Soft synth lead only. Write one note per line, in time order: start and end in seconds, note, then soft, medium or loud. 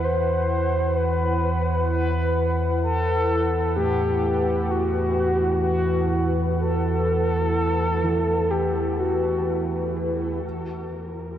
0.04 0.98 C5 loud
0.97 1.89 B4 medium
1.90 2.55 B4 loud
2.82 3.72 A4 loud
3.76 4.72 G4 medium
4.70 5.61 F#4 medium
5.61 6.30 F#4 medium
6.58 8.52 A4 loud
8.51 9.01 G4 medium
8.99 9.96 F#4 medium